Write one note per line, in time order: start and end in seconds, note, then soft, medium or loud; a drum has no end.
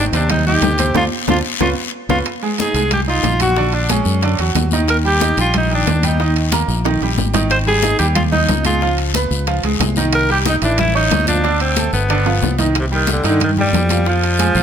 0.13 0.59 D#2 medium
0.13 0.41 C3 medium
0.13 0.41 C4 medium
0.13 0.30 D4 medium
0.13 0.41 C5 medium
0.13 high bongo soft
0.13 high conga soft
0.13 high timbale medium
0.13 short guiro medium
0.29 0.46 D#4 medium
0.29 high bongo medium
0.29 high conga soft
0.29 low conga medium
0.29 high timbale medium
0.29 long guiro medium
0.47 0.74 D#3 medium
0.47 0.74 D#4 medium
0.47 0.92 G4 loud
0.47 0.75 D#5 medium
0.47 high bongo soft
0.47 high conga soft
0.47 low conga medium
0.62 0.93 D2 medium
0.62 high bongo soft
0.62 low bongo medium
0.62 high conga medium
0.62 high timbale medium
0.62 low timbale medium
0.62 short guiro medium
0.78 0.93 C3 medium
0.78 0.93 C4 medium
0.78 0.93 C5 medium
0.78 high conga medium
0.78 high timbale loud
0.78 short guiro medium
0.94 1.07 D2 loud
0.94 1.06 C4 medium
0.94 1.06 D4 loud
0.94 1.06 F4 medium
0.94 1.05 F4 loud
0.94 low bongo loud
0.94 high conga loud
0.94 high timbale loud
0.94 long guiro loud
1.27 1.40 D2 medium
1.27 1.39 C4 medium
1.27 1.39 D4 loud
1.27 1.39 F4 medium
1.27 1.38 F4 medium
1.27 low bongo loud
1.27 high conga loud
1.27 high timbale loud
1.27 long guiro loud
1.60 1.73 C#2 medium
1.60 1.71 B3 loud
1.60 1.71 C#4 loud
1.60 1.71 F4 loud
1.60 1.69 F4 medium
1.60 low bongo loud
1.60 high conga medium
1.60 high timbale loud
1.60 long guiro loud
2.09 2.22 C#2 medium
2.09 2.21 B3 loud
2.09 2.20 C#4 medium
2.09 2.21 F4 medium
2.09 2.18 F4 loud
2.09 low bongo loud
2.09 high conga medium
2.09 high timbale loud
2.09 long guiro loud
2.26 high bongo medium
2.26 high conga soft
2.26 high timbale loud
2.26 long guiro medium
2.43 2.56 G#3 medium
2.43 2.56 G#4 medium
2.43 2.57 G#5 medium
2.43 high bongo soft
2.43 high conga soft
2.58 2.73 D#4 medium
2.58 2.91 G#4 loud
2.58 2.73 D#5 medium
2.58 2.74 D#6 medium
2.58 high bongo medium
2.58 high conga loud
2.58 high timbale medium
2.58 low timbale medium
2.58 short guiro medium
2.74 3.21 C2 medium
2.74 3.02 G#3 medium
2.74 3.03 G#4 medium
2.74 3.03 G#5 medium
2.74 high bongo soft
2.74 high conga soft
2.74 high timbale medium
2.74 short guiro medium
2.91 3.01 G4 medium
2.91 high bongo medium
2.91 high conga soft
2.91 low conga medium
2.91 high timbale medium
2.91 long guiro medium
3.08 3.35 D#4 medium
3.08 3.39 F4 loud
3.08 3.35 D#5 medium
3.08 3.35 D#6 medium
3.08 high bongo soft
3.08 high conga soft
3.23 4.00 A#1 medium
3.23 high bongo soft
3.23 low bongo medium
3.23 high conga medium
3.23 high timbale medium
3.23 low timbale medium
3.23 short guiro medium
3.40 3.54 F#3 medium
3.40 3.54 F#4 medium
3.40 3.76 F#4 loud
3.40 3.54 F#5 medium
3.40 high conga medium
3.40 high timbale loud
3.40 short guiro medium
3.56 3.84 D3 medium
3.56 3.84 D4 medium
3.56 3.84 D5 medium
3.56 high bongo medium
3.56 high conga soft
3.56 long guiro medium
3.72 3.90 D4 medium
3.72 high bongo soft
3.72 high conga soft
3.72 high timbale medium
3.89 4.17 G#3 medium
3.89 4.52 C#4 medium
3.89 4.17 G#4 medium
3.89 4.17 G#5 medium
3.89 high bongo medium
3.89 high conga medium
3.89 high timbale medium
3.89 low timbale medium
3.89 short guiro medium
4.05 4.36 F#2 medium
4.05 high bongo soft
4.05 high conga soft
4.05 short guiro medium
4.21 4.36 D3 medium
4.21 4.36 D4 medium
4.21 4.37 D5 medium
4.21 high bongo medium
4.21 high conga soft
4.21 high timbale medium
4.21 long guiro medium
4.39 4.54 E2 medium
4.39 4.66 F#3 medium
4.39 4.67 F#4 medium
4.39 4.67 F#5 medium
4.39 high bongo soft
4.39 high conga soft
4.39 high timbale medium
4.55 5.32 D#2 medium
4.55 high bongo soft
4.55 low bongo medium
4.55 high conga medium
4.55 high timbale medium
4.55 low timbale medium
4.55 short guiro medium
4.71 4.99 D#3 medium
4.71 5.00 D#4 medium
4.71 5.00 D#5 medium
4.71 high conga medium
4.71 short guiro medium
4.88 4.97 A#4 loud
4.88 high bongo medium
4.88 high timbale loud
4.88 long guiro medium
5.05 5.18 G3 medium
5.05 5.18 G4 medium
5.05 5.36 G4 loud
5.05 5.19 G5 medium
5.05 high bongo soft
5.05 high conga soft
5.20 5.35 D#4 medium
5.20 5.35 D#5 medium
5.20 5.35 D#6 medium
5.20 high bongo medium
5.20 high conga medium
5.20 high timbale medium
5.20 low timbale medium
5.20 short guiro medium
5.37 5.83 A#1 loud
5.37 5.65 G3 medium
5.37 5.55 F4 medium
5.37 5.65 G4 medium
5.37 5.65 G5 medium
5.37 high conga soft
5.37 high timbale medium
5.37 short guiro medium
5.54 5.71 D#4 loud
5.54 high bongo medium
5.54 high conga soft
5.54 low conga medium
5.54 high timbale loud
5.54 long guiro medium
5.71 5.97 D#3 medium
5.71 5.98 G5 medium
5.71 5.97 D#6 medium
5.71 high bongo soft
5.71 high conga soft
5.75 6.03 D4 medium
5.86 6.63 D#2 medium
5.86 high bongo soft
5.86 low bongo medium
5.86 high conga medium
5.86 high timbale medium
5.86 low timbale medium
5.86 short guiro medium
6.03 6.17 G3 medium
6.03 6.17 G4 medium
6.03 6.17 G5 medium
6.03 high conga medium
6.03 high timbale medium
6.03 short guiro medium
6.07 6.36 D#4 medium
6.20 6.47 D#3 medium
6.20 6.47 D#4 medium
6.20 6.47 D#5 medium
6.20 high bongo medium
6.20 high conga soft
6.20 long guiro medium
6.36 high bongo soft
6.36 high conga soft
6.36 high timbale medium
6.52 6.79 A#3 medium
6.52 6.79 A#4 medium
6.52 6.80 A#5 medium
6.52 high bongo medium
6.52 high conga loud
6.52 high timbale medium
6.52 low timbale medium
6.52 short guiro medium
6.68 6.99 A#1 medium
6.68 high bongo soft
6.68 high conga soft
6.68 short guiro medium
6.85 6.98 D#3 medium
6.85 6.98 D#4 medium
6.85 6.99 D#5 medium
6.85 high bongo medium
6.85 high conga soft
6.85 high timbale loud
6.85 long guiro medium
7.01 7.17 A#1 medium
7.01 7.29 G3 medium
7.01 7.29 G4 medium
7.01 7.29 G5 medium
7.01 high bongo soft
7.01 high conga soft
7.01 high timbale medium
7.17 7.94 G#1 medium
7.17 high bongo soft
7.17 low bongo medium
7.17 high conga medium
7.17 low timbale medium
7.17 short guiro medium
7.34 7.61 D#3 medium
7.34 7.61 D#4 medium
7.34 7.61 D#5 medium
7.34 high conga medium
7.34 low timbale loud
7.34 short guiro medium
7.50 7.59 C5 loud
7.50 high bongo medium
7.50 high conga soft
7.50 high timbale loud
7.50 long guiro medium
7.67 7.80 G3 medium
7.67 7.80 G4 medium
7.67 7.98 G#4 loud
7.67 7.81 G5 medium
7.67 high bongo soft
7.67 high conga soft
7.83 7.97 D#4 medium
7.83 7.97 D#5 medium
7.83 7.97 D#6 medium
7.83 high bongo medium
7.83 high conga medium
7.83 high timbale medium
7.83 low timbale medium
7.83 short guiro medium
7.99 8.45 D#2 medium
7.99 8.27 G3 medium
7.99 8.07 G4 medium
7.99 8.27 G4 medium
7.99 8.27 G5 medium
7.99 high conga soft
7.99 high timbale medium
7.99 short guiro medium
8.15 8.23 F4 medium
8.15 high bongo medium
8.15 high conga soft
8.15 low conga medium
8.15 high timbale medium
8.15 long guiro medium
8.32 8.63 D#4 loud
8.32 8.59 D#4 medium
8.32 8.59 D#5 medium
8.32 8.60 D#6 medium
8.32 high bongo soft
8.32 high conga soft
8.32 low conga medium
8.48 9.25 C#2 medium
8.48 high bongo soft
8.48 low bongo medium
8.48 high conga medium
8.48 high timbale medium
8.48 low timbale medium
8.48 short guiro medium
8.64 8.79 G#3 medium
8.64 8.96 F4 medium
8.64 8.79 G#4 medium
8.64 8.79 G#5 medium
8.64 high conga medium
8.64 high timbale medium
8.64 short guiro medium
8.81 9.09 F3 medium
8.81 9.09 F4 medium
8.81 9.09 F5 medium
8.81 high bongo medium
8.81 high conga soft
8.81 long guiro medium
8.98 high bongo soft
8.98 high conga soft
8.98 high timbale medium
9.14 9.42 B3 medium
9.14 9.42 B4 medium
9.14 9.42 B5 medium
9.14 high bongo medium
9.14 high conga medium
9.14 high timbale medium
9.14 low timbale medium
9.14 short guiro medium
9.31 9.61 C#2 medium
9.31 high bongo soft
9.31 high conga soft
9.31 short guiro medium
9.47 9.61 F3 medium
9.47 9.61 F4 medium
9.47 9.61 F5 medium
9.47 high bongo medium
9.47 high conga soft
9.47 high timbale medium
9.47 long guiro medium
9.63 9.79 C#2 medium
9.63 9.91 G#3 medium
9.63 9.91 G#4 medium
9.63 9.91 G#5 medium
9.63 high bongo soft
9.63 high conga soft
9.63 high timbale medium
9.80 10.56 C2 medium
9.80 high bongo soft
9.80 low bongo medium
9.80 high conga medium
9.80 high timbale loud
9.80 low timbale medium
9.80 short guiro medium
9.96 10.24 D#3 medium
9.96 10.24 D#4 medium
9.96 10.24 D#5 medium
9.96 high conga medium
9.96 short guiro medium
10.13 10.29 A#4 loud
10.13 high bongo medium
10.13 high conga soft
10.13 high timbale loud
10.13 long guiro medium
10.29 10.43 G3 medium
10.29 10.43 G4 medium
10.29 10.39 G4 loud
10.29 10.43 G5 medium
10.29 high bongo soft
10.29 high conga soft
10.45 10.59 D#4 medium
10.45 10.59 D#5 medium
10.45 10.60 D#6 medium
10.45 high bongo medium
10.45 high conga medium
10.45 high timbale medium
10.45 low timbale medium
10.45 short guiro medium
10.49 10.56 D#4 medium
10.62 11.08 A1 medium
10.62 10.89 E3 medium
10.62 10.79 D4 medium
10.62 10.89 E4 medium
10.62 10.90 E5 medium
10.62 high bongo soft
10.62 high conga soft
10.62 high timbale medium
10.62 short guiro medium
10.78 10.95 E4 loud
10.78 high bongo medium
10.78 high conga soft
10.78 low conga medium
10.78 high timbale medium
10.78 long guiro medium
10.95 11.22 C#4 medium
10.95 11.26 D#4 loud
10.95 11.22 C#5 medium
10.95 11.22 C#6 medium
10.95 high bongo soft
10.95 high conga soft
11.11 11.88 D2 medium
11.11 high bongo soft
11.11 low bongo medium
11.11 high conga medium
11.11 high timbale medium
11.11 low timbale medium
11.11 short guiro medium
11.27 11.41 F3 medium
11.27 11.59 D4 medium
11.27 11.41 F4 medium
11.27 11.41 F5 medium
11.27 high conga medium
11.27 high timbale medium
11.27 short guiro medium
11.44 11.71 D3 medium
11.44 11.71 D4 medium
11.44 11.71 D5 medium
11.44 high bongo medium
11.44 high conga soft
11.44 long guiro medium
11.60 11.92 C4 medium
11.60 high bongo soft
11.60 high conga soft
11.60 high timbale medium
11.76 12.04 A3 medium
11.76 12.04 A4 medium
11.76 12.05 A5 medium
11.76 high bongo medium
11.76 high conga loud
11.76 high timbale medium
11.76 low timbale medium
11.76 short guiro medium
11.93 12.39 G1 loud
11.93 12.55 B3 medium
11.93 high bongo soft
11.93 high conga soft
11.93 short guiro medium
12.09 12.23 D3 medium
12.09 12.23 D4 medium
12.09 12.24 D5 medium
12.09 high bongo medium
12.09 high conga soft
12.09 high timbale medium
12.09 long guiro medium
12.26 12.53 F3 medium
12.26 12.53 F4 medium
12.26 12.53 F5 medium
12.26 high bongo soft
12.26 high conga soft
12.26 high timbale medium
12.41 13.19 C2 medium
12.41 high bongo soft
12.41 low bongo medium
12.41 high conga medium
12.41 low timbale medium
12.41 short guiro medium
12.58 12.72 D#3 medium
12.58 12.72 D#4 medium
12.58 12.73 D#5 medium
12.58 high conga medium
12.58 low timbale medium
12.58 short guiro medium
12.75 high bongo medium
12.75 high conga soft
12.75 high timbale loud
12.75 long guiro medium
12.79 12.86 C3 loud
12.92 13.09 D#3 loud
12.92 13.19 G3 medium
12.92 13.19 G4 medium
12.92 13.19 G5 medium
12.92 high bongo soft
12.92 high conga soft
13.07 high bongo medium
13.07 high conga medium
13.07 high timbale medium
13.07 low timbale medium
13.07 short guiro medium
13.12 13.26 D3 medium
13.23 13.70 G2 medium
13.23 13.51 D#3 medium
13.23 13.51 D#4 loud
13.23 13.51 D#5 medium
13.23 high conga soft
13.23 high timbale medium
13.23 short guiro medium
13.28 13.42 D3 medium
13.40 13.50 D#3 loud
13.40 high bongo medium
13.40 high conga soft
13.40 low conga medium
13.40 high timbale loud
13.40 long guiro medium
13.57 13.85 G3 medium
13.57 14.05 G3 loud
13.57 13.85 G4 medium
13.57 13.85 G5 medium
13.57 high bongo soft
13.57 high conga soft
13.57 low conga medium
13.73 14.50 F2 medium
13.73 high bongo soft
13.73 low bongo medium
13.73 high conga medium
13.73 high timbale medium
13.73 low timbale medium
13.73 short guiro medium
13.89 14.04 F3 medium
13.89 14.04 F4 medium
13.89 14.04 F5 medium
13.89 high conga medium
13.89 high timbale medium
13.89 short guiro medium
14.05 14.33 F3 medium
14.05 14.63 F3 loud
14.05 14.34 F4 medium
14.05 14.34 F5 medium
14.05 high bongo medium
14.05 high conga soft
14.05 long guiro medium
14.23 high bongo soft
14.23 high conga soft
14.23 high timbale medium
14.38 14.53 G#3 medium
14.38 14.53 G#4 medium
14.38 14.53 G#5 medium
14.38 high bongo medium
14.38 high conga medium
14.38 high timbale medium
14.38 low timbale medium
14.38 short guiro medium
14.55 14.63 A#1 loud
14.55 14.63 F3 medium
14.55 14.63 F4 medium
14.55 14.63 F5 medium
14.55 high conga soft
14.55 short guiro medium